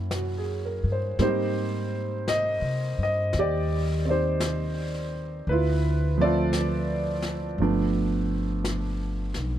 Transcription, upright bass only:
0.00 0.79 F#2 medium
0.83 1.16 G2 medium
1.19 2.58 G#2 medium
2.62 2.95 C3 medium
2.98 3.31 G2 medium
3.34 5.44 D#2 medium
5.47 7.55 D2 medium
7.58 9.32 G1 medium
9.36 9.59 B1 medium

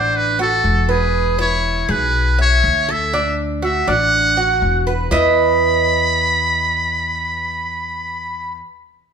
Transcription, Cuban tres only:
0.00 0.38 D4 medium
0.39 0.88 F#4 medium
0.89 1.37 B4 medium
1.39 1.87 E4 medium
1.89 2.37 G#4 medium
2.38 2.87 E5 medium
2.89 3.13 A4 medium
3.13 3.62 D4 medium
3.62 3.87 F#4 medium
3.88 4.36 D4 medium
4.37 4.86 F#4 medium
4.87 5.10 B4 medium
5.11 8.60 E4 medium
5.11 8.60 B4 medium
5.11 8.61 D#5 loud

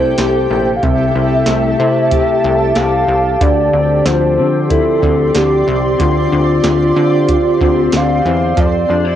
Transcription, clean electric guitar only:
0.00 0.82 C3 medium
0.00 1.47 A3 medium
0.00 0.51 E4 medium
0.00 0.17 G4 medium
0.19 2.11 G4 medium
0.51 1.15 E4 soft
0.83 3.40 C3 medium
1.16 1.79 E4 medium
1.48 3.72 A3 medium
1.80 3.44 E4 medium
2.12 2.75 G4 medium
2.76 3.47 G4 medium
3.41 5.97 D3 medium
3.73 4.37 C4 medium
4.06 7.56 F3 medium
4.38 5.02 C4 medium
4.70 6.02 E4 medium
5.02 5.66 C4 medium
5.66 6.31 C4 soft
5.99 8.57 D3 medium
6.32 6.96 C4 medium
6.96 7.61 C4 medium
7.61 8.25 C4 medium
8.25 8.92 C4 medium
8.89 9.05 D4 medium
9.05 9.15 E4 soft

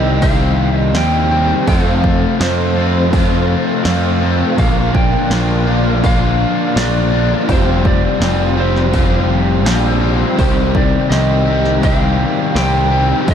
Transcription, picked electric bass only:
0.00 0.95 C2 medium
0.95 1.52 D#2 medium
1.68 2.25 F2 medium
2.40 3.54 F2 medium
3.85 4.42 F2 loud
4.58 5.15 A#1 medium
5.30 6.44 A#1 medium
6.76 7.33 A#1 medium
7.49 8.06 F1 medium
8.20 9.66 F1 medium
9.66 10.22 A#1 medium
10.39 10.95 C2 medium
11.11 12.24 C2 medium
12.55 13.12 C2 loud
13.28 13.34 F2 medium

